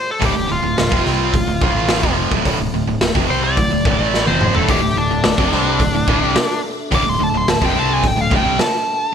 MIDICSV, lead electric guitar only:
0, 0, Header, 1, 2, 480
1, 0, Start_track
1, 0, Key_signature, -1, "minor"
1, 0, Tempo, 558140
1, 192, Time_signature, 4, 2, 24, 8
1, 7864, End_track
2, 0, Start_track
2, 0, Title_t, "Lead electric guitar"
2, 0, Program_c, 0, 29
2, 97, Note_on_c, 0, 69, 81
2, 217, Note_off_c, 0, 69, 0
2, 217, Note_on_c, 0, 67, 81
2, 438, Note_off_c, 0, 67, 0
2, 444, Note_on_c, 0, 65, 100
2, 1845, Note_off_c, 0, 65, 0
2, 2842, Note_on_c, 0, 72, 88
2, 2954, Note_off_c, 0, 72, 0
2, 2958, Note_on_c, 0, 74, 92
2, 3655, Note_off_c, 0, 74, 0
2, 3670, Note_on_c, 0, 72, 80
2, 3905, Note_off_c, 0, 72, 0
2, 3913, Note_on_c, 0, 69, 85
2, 4041, Note_off_c, 0, 69, 0
2, 4041, Note_on_c, 0, 67, 90
2, 4271, Note_off_c, 0, 67, 0
2, 4281, Note_on_c, 0, 62, 95
2, 5683, Note_off_c, 0, 62, 0
2, 5976, Note_on_c, 0, 86, 104
2, 6099, Note_off_c, 0, 86, 0
2, 6099, Note_on_c, 0, 84, 81
2, 6203, Note_off_c, 0, 84, 0
2, 6222, Note_on_c, 0, 81, 88
2, 6325, Note_off_c, 0, 81, 0
2, 6341, Note_on_c, 0, 84, 86
2, 6445, Note_off_c, 0, 84, 0
2, 6445, Note_on_c, 0, 81, 87
2, 6555, Note_off_c, 0, 81, 0
2, 6583, Note_on_c, 0, 79, 85
2, 6699, Note_off_c, 0, 79, 0
2, 6699, Note_on_c, 0, 81, 87
2, 6821, Note_off_c, 0, 81, 0
2, 6821, Note_on_c, 0, 80, 102
2, 6943, Note_off_c, 0, 80, 0
2, 6943, Note_on_c, 0, 79, 82
2, 7060, Note_off_c, 0, 79, 0
2, 7060, Note_on_c, 0, 77, 86
2, 7163, Note_off_c, 0, 77, 0
2, 7190, Note_on_c, 0, 79, 82
2, 7403, Note_off_c, 0, 79, 0
2, 7407, Note_on_c, 0, 81, 109
2, 7864, Note_off_c, 0, 81, 0
2, 7864, End_track
0, 0, End_of_file